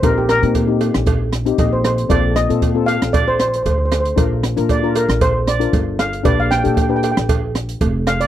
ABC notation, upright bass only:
X:1
M:4/4
L:1/16
Q:"Swing 16ths" 1/4=116
K:Bb
V:1 name="Upright bass" clef=bass
B,,,3 B,,4 B,,,4- B,,, B,,,4 | B,,,3 B,,4 B,,,4- B,,, D,,4 | B,,,3 B,,4 B,,,4- B,,, G,,,4 | B,,,3 B,,4 B,,,4- B,,, F,,,4 |]